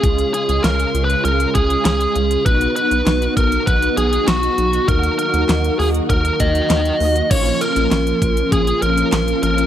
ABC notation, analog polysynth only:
X:1
M:4/4
L:1/8
Q:1/4=99
K:Bbphr
V:1 name="Analog polysynth"
[A,DF]8 | [=B,^D^F]8 | [B,EG]8 | [F,B,DF]8 |]